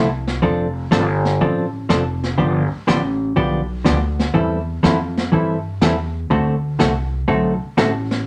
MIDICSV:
0, 0, Header, 1, 5, 480
1, 0, Start_track
1, 0, Tempo, 489796
1, 422, Time_signature, 4, 2, 24, 8
1, 8102, End_track
2, 0, Start_track
2, 0, Title_t, "Hollow-body jazz guitar"
2, 0, Program_c, 0, 26
2, 413, Note_on_c, 0, 53, 68
2, 414, Note_on_c, 0, 60, 63
2, 419, Note_on_c, 0, 62, 71
2, 421, Note_on_c, 0, 69, 68
2, 648, Note_off_c, 0, 53, 0
2, 648, Note_off_c, 0, 60, 0
2, 651, Note_off_c, 0, 62, 0
2, 652, Note_off_c, 0, 69, 0
2, 892, Note_on_c, 0, 53, 69
2, 898, Note_on_c, 0, 62, 74
2, 899, Note_on_c, 0, 60, 84
2, 900, Note_on_c, 0, 69, 83
2, 1019, Note_off_c, 0, 53, 0
2, 1022, Note_off_c, 0, 62, 0
2, 1023, Note_off_c, 0, 60, 0
2, 1023, Note_off_c, 0, 69, 0
2, 1382, Note_on_c, 0, 53, 62
2, 1383, Note_on_c, 0, 60, 62
2, 1385, Note_on_c, 0, 62, 65
2, 1388, Note_on_c, 0, 69, 66
2, 1612, Note_off_c, 0, 53, 0
2, 1613, Note_off_c, 0, 60, 0
2, 1614, Note_off_c, 0, 62, 0
2, 1615, Note_off_c, 0, 69, 0
2, 1854, Note_on_c, 0, 53, 71
2, 1857, Note_on_c, 0, 60, 77
2, 1862, Note_on_c, 0, 62, 74
2, 1865, Note_on_c, 0, 69, 86
2, 1980, Note_off_c, 0, 53, 0
2, 1982, Note_off_c, 0, 60, 0
2, 1984, Note_off_c, 0, 62, 0
2, 1986, Note_off_c, 0, 69, 0
2, 2328, Note_on_c, 0, 50, 60
2, 2331, Note_on_c, 0, 53, 63
2, 2334, Note_on_c, 0, 59, 60
2, 2335, Note_on_c, 0, 62, 66
2, 2335, Note_on_c, 0, 67, 65
2, 2566, Note_off_c, 0, 50, 0
2, 2567, Note_off_c, 0, 53, 0
2, 2569, Note_off_c, 0, 59, 0
2, 2569, Note_off_c, 0, 62, 0
2, 2569, Note_off_c, 0, 67, 0
2, 2814, Note_on_c, 0, 50, 73
2, 2819, Note_on_c, 0, 53, 72
2, 2819, Note_on_c, 0, 59, 74
2, 2823, Note_on_c, 0, 62, 70
2, 2824, Note_on_c, 0, 67, 81
2, 2941, Note_off_c, 0, 50, 0
2, 2943, Note_off_c, 0, 53, 0
2, 2943, Note_off_c, 0, 59, 0
2, 2945, Note_off_c, 0, 62, 0
2, 2946, Note_off_c, 0, 67, 0
2, 3293, Note_on_c, 0, 50, 62
2, 3293, Note_on_c, 0, 53, 63
2, 3296, Note_on_c, 0, 59, 62
2, 3297, Note_on_c, 0, 62, 62
2, 3299, Note_on_c, 0, 67, 71
2, 3528, Note_off_c, 0, 50, 0
2, 3528, Note_off_c, 0, 53, 0
2, 3530, Note_off_c, 0, 59, 0
2, 3531, Note_off_c, 0, 62, 0
2, 3531, Note_off_c, 0, 67, 0
2, 3768, Note_on_c, 0, 50, 74
2, 3775, Note_on_c, 0, 53, 69
2, 3778, Note_on_c, 0, 59, 79
2, 3779, Note_on_c, 0, 62, 80
2, 3781, Note_on_c, 0, 67, 78
2, 3898, Note_off_c, 0, 50, 0
2, 3901, Note_off_c, 0, 53, 0
2, 3903, Note_off_c, 0, 59, 0
2, 3903, Note_off_c, 0, 62, 0
2, 3904, Note_off_c, 0, 67, 0
2, 4250, Note_on_c, 0, 52, 63
2, 4251, Note_on_c, 0, 60, 60
2, 4253, Note_on_c, 0, 55, 57
2, 4256, Note_on_c, 0, 64, 67
2, 4259, Note_on_c, 0, 69, 62
2, 4487, Note_off_c, 0, 52, 0
2, 4487, Note_off_c, 0, 60, 0
2, 4488, Note_off_c, 0, 55, 0
2, 4490, Note_off_c, 0, 64, 0
2, 4491, Note_off_c, 0, 69, 0
2, 4733, Note_on_c, 0, 52, 77
2, 4735, Note_on_c, 0, 60, 80
2, 4736, Note_on_c, 0, 55, 72
2, 4741, Note_on_c, 0, 69, 81
2, 4742, Note_on_c, 0, 64, 75
2, 4860, Note_off_c, 0, 52, 0
2, 4861, Note_off_c, 0, 55, 0
2, 4861, Note_off_c, 0, 60, 0
2, 4864, Note_off_c, 0, 64, 0
2, 4864, Note_off_c, 0, 69, 0
2, 5212, Note_on_c, 0, 52, 62
2, 5218, Note_on_c, 0, 55, 58
2, 5219, Note_on_c, 0, 60, 56
2, 5224, Note_on_c, 0, 64, 61
2, 5224, Note_on_c, 0, 69, 64
2, 5447, Note_off_c, 0, 52, 0
2, 5450, Note_off_c, 0, 55, 0
2, 5451, Note_off_c, 0, 60, 0
2, 5454, Note_off_c, 0, 64, 0
2, 5454, Note_off_c, 0, 69, 0
2, 5698, Note_on_c, 0, 52, 78
2, 5704, Note_on_c, 0, 55, 70
2, 5708, Note_on_c, 0, 60, 83
2, 5709, Note_on_c, 0, 64, 76
2, 5711, Note_on_c, 0, 69, 81
2, 5822, Note_off_c, 0, 52, 0
2, 5825, Note_off_c, 0, 55, 0
2, 5827, Note_off_c, 0, 60, 0
2, 5828, Note_off_c, 0, 64, 0
2, 5829, Note_off_c, 0, 69, 0
2, 6175, Note_on_c, 0, 50, 65
2, 6180, Note_on_c, 0, 57, 68
2, 6181, Note_on_c, 0, 60, 68
2, 6184, Note_on_c, 0, 69, 72
2, 6185, Note_on_c, 0, 66, 69
2, 6409, Note_off_c, 0, 50, 0
2, 6411, Note_off_c, 0, 57, 0
2, 6412, Note_off_c, 0, 60, 0
2, 6413, Note_off_c, 0, 69, 0
2, 6414, Note_off_c, 0, 66, 0
2, 6654, Note_on_c, 0, 50, 73
2, 6658, Note_on_c, 0, 57, 75
2, 6661, Note_on_c, 0, 60, 77
2, 6661, Note_on_c, 0, 66, 77
2, 6664, Note_on_c, 0, 69, 84
2, 6779, Note_off_c, 0, 50, 0
2, 6782, Note_off_c, 0, 57, 0
2, 6783, Note_off_c, 0, 60, 0
2, 6783, Note_off_c, 0, 66, 0
2, 6785, Note_off_c, 0, 69, 0
2, 7131, Note_on_c, 0, 50, 58
2, 7132, Note_on_c, 0, 60, 64
2, 7136, Note_on_c, 0, 57, 62
2, 7137, Note_on_c, 0, 66, 65
2, 7137, Note_on_c, 0, 69, 71
2, 7366, Note_off_c, 0, 50, 0
2, 7367, Note_off_c, 0, 60, 0
2, 7369, Note_off_c, 0, 57, 0
2, 7369, Note_off_c, 0, 66, 0
2, 7369, Note_off_c, 0, 69, 0
2, 7617, Note_on_c, 0, 50, 77
2, 7618, Note_on_c, 0, 57, 79
2, 7621, Note_on_c, 0, 66, 86
2, 7622, Note_on_c, 0, 60, 73
2, 7623, Note_on_c, 0, 69, 85
2, 7741, Note_off_c, 0, 50, 0
2, 7741, Note_off_c, 0, 57, 0
2, 7743, Note_off_c, 0, 60, 0
2, 7743, Note_off_c, 0, 66, 0
2, 7744, Note_off_c, 0, 69, 0
2, 8102, End_track
3, 0, Start_track
3, 0, Title_t, "Upright bass"
3, 0, Program_c, 1, 32
3, 0, Note_on_c, 1, 36, 96
3, 404, Note_off_c, 1, 36, 0
3, 416, Note_on_c, 1, 29, 95
3, 885, Note_off_c, 1, 29, 0
3, 900, Note_on_c, 1, 31, 101
3, 1367, Note_off_c, 1, 31, 0
3, 1384, Note_on_c, 1, 33, 83
3, 1849, Note_off_c, 1, 33, 0
3, 1856, Note_on_c, 1, 29, 95
3, 2325, Note_off_c, 1, 29, 0
3, 2347, Note_on_c, 1, 31, 84
3, 2652, Note_off_c, 1, 31, 0
3, 2817, Note_on_c, 1, 33, 99
3, 3286, Note_off_c, 1, 33, 0
3, 3303, Note_on_c, 1, 35, 83
3, 3769, Note_off_c, 1, 35, 0
3, 3782, Note_on_c, 1, 38, 96
3, 4248, Note_off_c, 1, 38, 0
3, 4261, Note_on_c, 1, 40, 88
3, 4728, Note_off_c, 1, 40, 0
3, 4740, Note_on_c, 1, 41, 98
3, 5207, Note_off_c, 1, 41, 0
3, 5220, Note_on_c, 1, 43, 78
3, 5687, Note_off_c, 1, 43, 0
3, 5699, Note_on_c, 1, 40, 100
3, 6166, Note_off_c, 1, 40, 0
3, 6180, Note_on_c, 1, 38, 91
3, 6647, Note_off_c, 1, 38, 0
3, 6658, Note_on_c, 1, 36, 96
3, 7125, Note_off_c, 1, 36, 0
3, 7139, Note_on_c, 1, 35, 88
3, 7447, Note_off_c, 1, 35, 0
3, 7620, Note_on_c, 1, 33, 99
3, 8085, Note_off_c, 1, 33, 0
3, 8102, End_track
4, 0, Start_track
4, 0, Title_t, "Muted upright bass strokes"
4, 2675, Note_on_c, 9, 29, 42
4, 2773, Note_off_c, 9, 29, 0
4, 7470, Note_on_c, 9, 29, 40
4, 7568, Note_off_c, 9, 29, 0
4, 8102, End_track
5, 0, Start_track
5, 0, Title_t, "Drums"
5, 269, Note_on_c, 9, 38, 47
5, 367, Note_off_c, 9, 38, 0
5, 417, Note_on_c, 9, 25, 47
5, 420, Note_on_c, 9, 36, 35
5, 518, Note_off_c, 9, 36, 0
5, 899, Note_on_c, 9, 38, 63
5, 899, Note_on_c, 9, 44, 56
5, 997, Note_off_c, 9, 38, 0
5, 997, Note_off_c, 9, 44, 0
5, 1227, Note_on_c, 9, 38, 42
5, 1325, Note_off_c, 9, 38, 0
5, 1378, Note_off_c, 9, 25, 0
5, 1378, Note_on_c, 9, 25, 55
5, 1381, Note_on_c, 9, 36, 38
5, 1479, Note_off_c, 9, 36, 0
5, 1861, Note_on_c, 9, 38, 66
5, 1861, Note_on_c, 9, 44, 55
5, 1959, Note_off_c, 9, 38, 0
5, 1959, Note_off_c, 9, 44, 0
5, 2190, Note_on_c, 9, 38, 46
5, 2288, Note_off_c, 9, 38, 0
5, 2344, Note_off_c, 9, 25, 0
5, 2344, Note_on_c, 9, 25, 49
5, 2344, Note_on_c, 9, 36, 36
5, 2442, Note_off_c, 9, 36, 0
5, 2825, Note_on_c, 9, 38, 69
5, 2825, Note_on_c, 9, 44, 66
5, 2923, Note_off_c, 9, 38, 0
5, 2923, Note_off_c, 9, 44, 0
5, 3303, Note_off_c, 9, 25, 0
5, 3303, Note_on_c, 9, 25, 50
5, 3304, Note_on_c, 9, 36, 36
5, 3402, Note_off_c, 9, 36, 0
5, 3777, Note_on_c, 9, 38, 69
5, 3777, Note_on_c, 9, 44, 56
5, 3875, Note_off_c, 9, 38, 0
5, 3875, Note_off_c, 9, 44, 0
5, 4111, Note_on_c, 9, 38, 46
5, 4209, Note_off_c, 9, 38, 0
5, 4262, Note_off_c, 9, 25, 0
5, 4262, Note_on_c, 9, 25, 53
5, 4262, Note_on_c, 9, 36, 34
5, 4360, Note_off_c, 9, 36, 0
5, 4743, Note_on_c, 9, 38, 64
5, 4743, Note_on_c, 9, 44, 55
5, 4841, Note_off_c, 9, 38, 0
5, 4841, Note_off_c, 9, 44, 0
5, 5071, Note_on_c, 9, 38, 43
5, 5169, Note_off_c, 9, 38, 0
5, 5221, Note_on_c, 9, 36, 37
5, 5222, Note_off_c, 9, 25, 0
5, 5222, Note_on_c, 9, 25, 54
5, 5319, Note_off_c, 9, 36, 0
5, 5700, Note_on_c, 9, 38, 66
5, 5700, Note_on_c, 9, 44, 59
5, 5798, Note_off_c, 9, 38, 0
5, 5798, Note_off_c, 9, 44, 0
5, 6180, Note_on_c, 9, 36, 35
5, 6183, Note_off_c, 9, 25, 0
5, 6183, Note_on_c, 9, 25, 47
5, 6278, Note_off_c, 9, 36, 0
5, 6660, Note_on_c, 9, 38, 68
5, 6660, Note_on_c, 9, 44, 69
5, 6758, Note_off_c, 9, 38, 0
5, 6758, Note_off_c, 9, 44, 0
5, 7138, Note_off_c, 9, 25, 0
5, 7138, Note_on_c, 9, 25, 57
5, 7139, Note_on_c, 9, 36, 36
5, 7237, Note_off_c, 9, 36, 0
5, 7621, Note_on_c, 9, 38, 71
5, 7621, Note_on_c, 9, 44, 62
5, 7719, Note_off_c, 9, 38, 0
5, 7719, Note_off_c, 9, 44, 0
5, 7948, Note_on_c, 9, 38, 47
5, 8046, Note_off_c, 9, 38, 0
5, 8102, Note_off_c, 9, 25, 0
5, 8102, End_track
0, 0, End_of_file